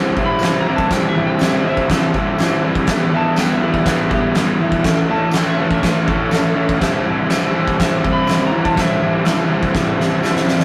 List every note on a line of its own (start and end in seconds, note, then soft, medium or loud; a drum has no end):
0.00 0.15 C3 medium
0.00 0.17 E3 medium
0.00 0.17 G3 medium
0.00 0.17 C4 loud
0.00 0.18 E4 medium
0.17 0.40 C3 loud
0.17 0.41 E3 loud
0.17 0.42 G3 loud
0.17 0.42 C4 loud
0.17 0.43 E4 loud
0.17 kick medium
0.26 0.57 B5 loud
0.39 0.64 C3 medium
0.39 0.66 E3 medium
0.39 0.66 C4 medium
0.39 tambourine medium
0.39 crash medium
0.43 0.66 G3 medium
0.43 0.67 E4 medium
0.43 snare loud
0.61 0.75 A#5 medium
0.65 0.89 C3 medium
0.65 0.91 E3 medium
0.65 0.92 G3 medium
0.65 0.91 C4 loud
0.65 0.92 E4 medium
0.76 0.91 A5 medium
0.76 kick loud
0.90 1.14 C3 medium
0.90 1.15 E3 loud
0.90 1.16 G3 loud
0.90 1.16 C4 loud
0.90 1.17 E4 loud
0.90 1.07 G5 medium
0.90 kick loud
0.90 snare loud
0.90 crash medium
1.09 1.24 E5 loud
1.15 1.37 C3 loud
1.15 1.40 E3 medium
1.15 1.40 G3 medium
1.15 1.39 C4 medium
1.15 1.41 E4 loud
1.27 1.41 G5 medium
1.39 1.63 C3 medium
1.39 1.65 E3 medium
1.39 1.65 G3 medium
1.39 1.65 C4 medium
1.39 1.66 E4 medium
1.39 snare loud
1.39 tambourine loud
1.39 crash medium
1.45 1.58 E5 medium
1.60 2.06 E5 loud
1.64 1.88 C3 medium
1.64 1.89 E3 medium
1.64 1.89 G3 loud
1.64 1.90 C4 loud
1.64 1.91 E4 loud
1.77 kick medium
1.89 2.13 C3 medium
1.89 2.14 E3 loud
1.89 2.14 G3 medium
1.89 2.15 C4 loud
1.89 2.16 E4 loud
1.89 kick loud
1.89 snare loud
1.89 crash medium
2.14 2.37 C3 medium
2.14 2.39 E3 loud
2.14 2.39 G3 loud
2.14 2.39 C4 loud
2.14 2.40 E4 loud
2.14 kick medium
2.38 2.62 C3 medium
2.38 2.63 E3 medium
2.38 2.63 G3 medium
2.38 2.64 C4 medium
2.38 2.65 E4 medium
2.38 snare loud
2.38 tambourine loud
2.38 crash medium
2.63 2.86 C3 medium
2.63 2.87 E3 medium
2.63 2.87 G3 medium
2.63 2.87 C4 loud
2.63 2.89 E4 medium
2.75 kick loud
2.87 3.11 E3 medium
2.87 3.11 G3 medium
2.87 3.12 B3 loud
2.87 3.13 E4 loud
2.87 kick loud
2.87 snare loud
2.87 crash medium
3.11 3.37 E3 medium
3.11 3.36 G3 medium
3.11 3.37 B3 medium
3.11 3.38 E4 loud
3.16 3.38 A5 medium
3.36 3.61 E3 medium
3.36 3.61 G3 medium
3.36 3.61 B3 loud
3.36 3.63 E4 medium
3.36 3.50 G5 medium
3.36 snare loud
3.36 tambourine loud
3.36 crash medium
3.52 3.63 E5 medium
3.61 3.86 E3 loud
3.61 3.85 G3 loud
3.61 3.87 B3 loud
3.61 3.88 E4 loud
3.61 3.74 B4 medium
3.72 3.85 D5 medium
3.72 kick medium
3.85 4.10 E3 medium
3.85 4.10 G3 medium
3.85 4.11 B3 medium
3.85 4.13 E4 medium
3.85 4.09 B4 medium
3.85 kick loud
3.85 snare loud
3.85 crash medium
4.10 4.35 E3 loud
4.10 4.36 G3 loud
4.10 4.36 B3 loud
4.10 4.37 E4 loud
4.10 4.58 G4 medium
4.10 kick medium
4.35 4.59 E3 medium
4.35 4.59 G3 medium
4.35 4.59 B3 medium
4.35 4.61 E4 loud
4.35 snare loud
4.35 tambourine medium
4.35 crash medium
4.59 4.85 E3 medium
4.59 4.83 G3 medium
4.59 4.83 B3 medium
4.59 4.86 E4 loud
4.72 kick loud
4.84 5.08 A2 loud
4.84 5.10 E3 loud
4.84 5.09 A3 loud
4.84 5.09 C#4 loud
4.84 5.11 E4 loud
4.84 kick loud
4.84 snare loud
4.84 crash medium
5.09 5.33 A2 loud
5.09 5.35 E3 medium
5.09 5.35 A3 loud
5.09 5.34 C#4 medium
5.09 5.36 E4 medium
5.09 5.33 A5 loud
5.31 5.56 A2 medium
5.31 5.58 E3 medium
5.31 snare loud
5.31 tambourine loud
5.31 crash medium
5.36 5.58 A3 medium
5.36 5.58 C#4 medium
5.36 5.59 E4 loud
5.36 5.47 G5 medium
5.49 5.59 E5 loud
5.57 5.81 A2 loud
5.57 5.82 E3 loud
5.57 5.82 A3 loud
5.57 5.83 C#4 loud
5.57 5.84 E4 loud
5.61 5.72 B4 medium
5.71 5.83 E5 loud
5.71 kick medium
5.82 6.06 A2 medium
5.82 6.08 E3 medium
5.82 6.07 A3 loud
5.82 6.07 C#4 medium
5.82 6.09 E4 loud
5.82 6.08 B4 loud
5.82 kick loud
5.82 snare loud
5.82 crash medium
6.07 6.29 A2 loud
6.07 6.30 E3 loud
6.07 6.30 A3 loud
6.07 6.31 C#4 loud
6.07 6.32 E4 loud
6.07 6.55 A4 loud
6.07 kick medium
6.30 6.53 A2 medium
6.30 6.54 E3 medium
6.30 6.54 A3 medium
6.30 6.55 C#4 medium
6.30 6.56 E4 medium
6.30 snare loud
6.30 tambourine loud
6.30 crash medium
6.54 6.78 A2 medium
6.54 6.79 E3 loud
6.54 6.78 A3 loud
6.54 6.79 C#4 medium
6.54 6.81 E4 loud
6.69 kick medium
6.79 7.03 C3 loud
6.79 7.04 E3 loud
6.79 7.04 G3 loud
6.79 7.05 C4 loud
6.79 7.05 E4 loud
6.79 kick loud
6.79 snare loud
6.79 crash medium
7.03 7.28 C3 medium
7.03 7.29 E3 medium
7.03 7.30 G3 loud
7.03 7.30 C4 loud
7.03 7.31 E4 loud
7.29 7.53 C3 medium
7.29 7.53 E3 medium
7.29 7.54 G3 medium
7.29 7.54 C4 loud
7.29 7.55 E4 loud
7.29 snare loud
7.29 tambourine loud
7.29 crash medium
7.53 7.77 C3 loud
7.53 7.78 E3 loud
7.53 7.79 G3 loud
7.53 7.79 C4 loud
7.53 7.80 E4 loud
7.68 kick medium
7.78 8.01 C3 medium
7.78 8.03 E3 medium
7.78 8.04 G3 medium
7.78 8.04 C4 loud
7.78 8.05 E4 loud
7.78 kick loud
7.78 snare loud
7.78 crash medium
8.02 8.26 C3 loud
8.02 8.28 E3 loud
8.02 8.28 G3 loud
8.02 8.28 C4 loud
8.02 8.29 E4 loud
8.02 kick medium
8.13 8.44 B5 loud
8.27 8.50 C3 medium
8.27 8.51 E3 medium
8.27 8.52 G3 medium
8.27 8.52 C4 medium
8.27 8.53 E4 medium
8.27 snare loud
8.27 tambourine medium
8.27 crash medium
8.47 8.61 A#5 medium
8.51 8.73 C3 medium
8.51 8.74 E3 loud
8.51 8.75 G3 medium
8.51 8.76 C4 medium
8.51 8.76 E4 medium
8.65 8.78 A5 medium
8.65 kick loud
8.75 8.99 C3 medium
8.75 9.00 E3 loud
8.75 9.00 G3 loud
8.75 9.01 C4 loud
8.75 9.02 E4 loud
8.75 kick loud
8.75 snare loud
8.75 crash medium
8.80 9.25 E5 loud
9.00 9.22 C3 medium
9.00 9.23 E3 medium
9.00 9.24 G3 medium
9.00 9.24 C4 medium
9.00 9.25 E4 loud
9.23 9.48 C3 medium
9.23 9.48 E3 medium
9.23 9.48 G3 medium
9.23 9.50 C4 medium
9.23 9.50 E4 medium
9.23 snare loud
9.23 tambourine medium
9.23 crash medium
9.49 9.72 C3 loud
9.49 9.72 E3 loud
9.49 9.74 G3 loud
9.49 9.74 C4 loud
9.49 9.75 E4 loud
9.63 kick medium
9.73 9.97 C3 medium
9.73 9.97 E3 loud
9.73 9.98 G3 loud
9.73 9.99 C4 loud
9.73 9.99 E4 loud
9.73 kick loud
9.73 snare medium
9.98 10.20 C3 medium
9.98 10.20 E3 medium
9.98 10.21 G3 loud
9.98 10.22 C4 loud
9.98 10.22 E4 loud
9.98 snare medium
10.21 10.44 C3 medium
10.21 10.45 E3 medium
10.21 10.46 G3 loud
10.21 10.46 C4 medium
10.21 10.46 E4 medium
10.21 snare medium
10.21 tambourine medium
10.36 snare medium
10.45 10.64 C3 medium
10.45 10.64 E3 medium
10.45 10.64 G3 medium
10.45 10.64 C4 loud
10.45 10.64 E4 loud
10.45 snare loud
10.60 snare loud